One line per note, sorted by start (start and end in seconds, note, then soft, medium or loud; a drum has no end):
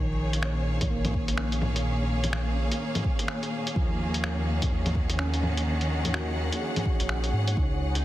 0.00 0.79 A#1 medium
0.00 3.76 A#2 medium
0.00 1.06 D#3 medium
0.00 8.05 C#4 medium
0.00 1.12 D#4 medium
0.00 8.05 G#4 medium
0.00 7.57 C#5 medium
0.00 8.05 C#5 medium
0.14 7.57 A#3 medium
0.22 7.57 F5 medium
0.33 closed hi-hat medium
0.43 finger snap loud
0.81 kick medium
0.81 closed hi-hat medium
0.81 low bongo soft
0.90 1.84 A#1 medium
0.90 2.01 A#3 medium
1.05 closed hi-hat soft
1.05 low bongo medium
1.14 kick loud
1.28 closed hi-hat medium
1.38 finger snap medium
1.52 closed hi-hat soft
1.62 low bongo soft
1.76 closed hi-hat medium
1.86 2.70 A#1 loud
2.24 closed hi-hat medium
2.24 low bongo soft
2.33 finger snap loud
2.72 closed hi-hat medium
2.95 closed hi-hat soft
2.95 low bongo soft
3.04 kick loud
3.19 closed hi-hat medium
3.28 finger snap loud
3.43 closed hi-hat soft
3.67 closed hi-hat medium
3.76 4.60 D#2 loud
3.76 7.57 D#3 medium
3.76 4.87 F3 medium
3.76 kick loud
4.14 closed hi-hat medium
4.19 8.05 F#5 medium
4.24 finger snap loud
4.62 kick loud
4.62 closed hi-hat medium
4.62 low bongo soft
4.71 5.65 D#2 medium
4.86 closed hi-hat soft
4.86 low bongo soft
4.95 kick loud
5.10 closed hi-hat medium
5.19 6.29 C#4 medium
5.19 finger snap loud
5.34 closed hi-hat soft
5.43 low bongo soft
5.57 closed hi-hat medium
5.66 6.50 D#2 loud
5.81 closed hi-hat soft
6.05 closed hi-hat medium
6.05 low bongo soft
6.14 7.25 F#4 medium
6.14 finger snap loud
6.52 closed hi-hat medium
6.61 7.72 G#4 soft
6.76 closed hi-hat soft
6.76 low bongo soft
6.86 kick loud
7.00 7.32 A#1 medium
7.00 closed hi-hat medium
7.09 finger snap loud
7.24 closed hi-hat soft
7.33 7.56 G#2 medium
7.48 closed hi-hat medium
7.57 8.05 C#2 medium
7.57 8.05 C#3 medium
7.57 8.05 D#4 soft
7.57 kick loud
7.90 8.05 D#4 medium
7.95 8.05 C#4 medium
7.95 closed hi-hat soft